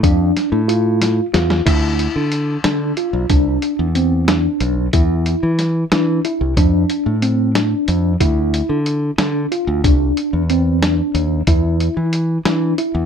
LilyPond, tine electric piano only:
\new Staff \with { instrumentName = "Tine electric piano" } { \time 5/8 \key d \dorian \tempo 4 = 92 d'4 f'4 f'8 | e'4 r8 d'8 f'8 | d'4 c'8 d'4 | e'4 r8 d'8 e'8 |
d'4 c'8 d'4 | e'4 r8 d'8 f'8 | d'4 c'8 d'4 | e'4 r8 d'8 e'8 | }